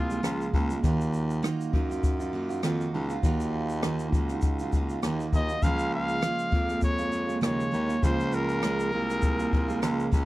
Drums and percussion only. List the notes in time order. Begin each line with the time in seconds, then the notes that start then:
0.10 shaker
0.24 cross-stick, shaker
0.41 shaker
0.53 kick
0.70 shaker
0.84 kick, shaker
1.01 shaker
1.13 shaker
1.30 shaker
1.44 cross-stick, shaker
1.61 shaker
1.73 kick
1.91 shaker
2.03 kick, shaker
2.21 shaker
2.50 shaker
2.63 cross-stick, shaker
2.81 shaker
3.10 shaker
3.23 kick, shaker
3.40 shaker
3.69 shaker
3.83 cross-stick, shaker
3.99 shaker
4.13 kick, shaker
4.29 cross-stick, shaker
4.41 kick, shaker
4.59 shaker
4.72 kick, shaker
4.89 shaker
5.03 cross-stick, shaker
5.20 shaker
5.33 kick, shaker
5.49 shaker
5.62 kick, shaker
5.79 shaker
6.08 shaker
6.22 cross-stick, shaker
6.39 shaker
6.52 kick
6.68 cross-stick, shaker
6.81 kick, shaker
6.98 shaker
7.12 shaker
7.29 shaker
7.43 cross-stick, shaker
7.60 shaker
7.74 shaker
7.90 shaker
8.03 kick, shaker
8.20 shaker
8.32 shaker
8.49 shaker
8.63 cross-stick, shaker
8.80 shaker
9.09 cross-stick, shaker
9.22 kick, shaker
9.39 shaker
9.53 kick
9.69 shaker
9.83 cross-stick, shaker
10.00 shaker
10.13 kick, shaker